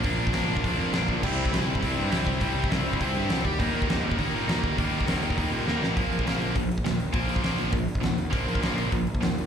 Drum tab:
CC |----------------|x---------------|----------------|----------------|
HH |o---o---o---o---|----o---o---o---|o---o---o---o---|o---o---o---o---|
SD |----o-------o---|----o-------o---|----o-------o---|----o-------o---|
BD |o--o---oo-----o-|o--o---oo-----o-|o--o---oo-----o-|o--o---oo-----o-|

CC |----------------|----------------|----------------|----------------|
HH |o---o---o-------|o-o-o-o-o-o-o-o-|o-o-o-o-o-o-o-o-|o-o-o-o-o-o-o-o-|
SD |----o-------o-o-|----o-------o---|----o-------o---|----o-------o---|
BD |o--o---oo-------|o--o----o--o----|o--o----o--o----|o--o----o--o----|